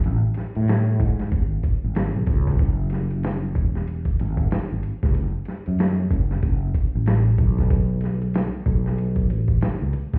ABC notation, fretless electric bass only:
X:1
M:4/4
L:1/16
Q:"Swing 16ths" 1/4=94
K:F#m
V:1 name="Fretless electric bass" clef=bass
A,,, z2 A,,3 G,,2 G,,,2 z G,,,2 B,,, C,,2 | F,,,6 E,,,4 G,,,2 z G,,, z C,, | F,,, z2 F,,3 F,,,2 F,,,2 z A,,,3 B,,,2- | B,,,6 B,,,4 A,,,2 z C,, z E,,, |]